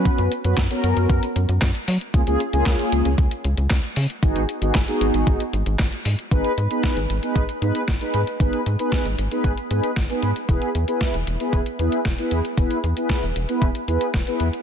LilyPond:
<<
  \new Staff \with { instrumentName = "Analog polysynth" } { \time 4/4 \key gis \minor \tempo 4 = 115 <b cis' fis' b'>8 r16 <b cis' fis' b'>16 r16 <b cis' fis' ais'>4 r4. r16 | <ais cis' eis' gis'>16 <ais cis' eis' gis'>16 r16 <ais cis' eis' gis'>4 r2 r16 | <b dis' fis' gis'>8 r16 <b dis' fis' gis'>16 r16 <b dis' fis' gis'>4 r4. r16 | <b dis' gis' b'>8 r16 <b dis' gis' b'>8 r8 <b dis' gis' b'>8 r16 <b dis' gis' b'>8 r16 <b dis' gis' b'>8 r16 |
<b dis' gis' b'>8 r16 <b dis' gis' b'>8 r8 <b dis' gis' b'>8 r16 <b dis' gis' b'>8 r16 <b dis' gis' b'>8 r16 | <b e' gis' b'>8 r16 <b e' gis' b'>8 r8 <b e' gis' b'>8 r16 <b e' gis' b'>8 r16 <b e' gis' b'>8 r16 | <b e' gis' b'>8 r16 <b e' gis' b'>8 r8 <b e' gis' b'>8 r16 <b e' gis' b'>8 r16 <b e' gis' b'>8 r16 | }
  \new Staff \with { instrumentName = "Analog synth bass" } { \clef bass \time 4/4 \key gis \minor r16 fis,16 r16 fis,16 fis,16 r16 fis,16 fis,16 fis,16 r16 fis,16 fis,16 fis,16 r16 fis16 r16 | cis,16 cis,16 r16 cis,16 cis,16 r16 cis,16 cis,16 cis,16 r16 cis,16 cis,16 cis,16 r16 cis16 r16 | gis,,16 gis,,16 r16 gis,,16 gis,,16 r16 gis,,16 gis,,16 gis,,16 r16 gis,,16 gis,,16 gis,,16 r16 gis,16 r16 | gis,,16 r16 gis,16 r8 gis,,16 gis,,16 r16 gis,,16 r16 gis,16 r16 gis,,16 r16 gis,16 r16 |
gis,,16 r16 gis,16 r8 gis,,16 gis,,16 r16 gis,,16 r16 gis,16 r16 gis,,16 r16 gis,16 r16 | e,,16 r16 e,16 r8 e,,16 e,,16 r16 e,,16 r16 e,16 r16 e,,16 r16 e,16 r16 | e,,16 r16 e,16 r8 e,,16 e,,16 r16 e,,16 r16 e,16 r16 e,,16 r16 e,16 r16 | }
  \new DrumStaff \with { instrumentName = "Drums" } \drummode { \time 4/4 <hh bd>16 hh16 hh16 hh16 <hc hh bd sn>16 hh16 hh16 hh16 <hh bd>16 hh16 hh16 hh16 <hc hh bd sn>16 hh16 hho16 hh16 | <hh bd>16 hh16 hh16 hh16 <hc hh bd sn>16 hh16 hh16 hh16 <hh bd>16 hh16 hh16 hh16 <hc hh bd sn>16 hh16 hho16 hh16 | <hh bd>16 hh16 hh16 hh16 <hc hh bd sn>16 hh16 hh16 hh16 <hh bd>16 hh16 hh16 hh16 <hc hh bd sn>16 hh16 hho16 hh16 | <hh bd>16 hh16 hh16 hh16 <hh bd sn>16 hh16 hh16 hh16 <hh bd>16 hh16 hh16 hh16 <hh bd sn>16 hh16 hh16 hh16 |
<hh bd>16 hh16 hh16 hh16 <hh bd sn>16 hh16 hh16 hh16 <hh bd>16 hh16 hh16 hh16 <hh bd sn>16 hh16 hh16 hh16 | <hh bd>16 hh16 hh16 hh16 <hh bd sn>16 hh16 hh16 hh16 <hh bd>16 hh16 hh16 hh16 <hh bd sn>16 hh16 hh16 hh16 | <hh bd>16 hh16 hh16 hh16 <hh bd sn>16 hh16 hh16 hh16 <hh bd>16 hh16 hh16 hh16 <hh bd sn>16 hh16 hh16 hh16 | }
>>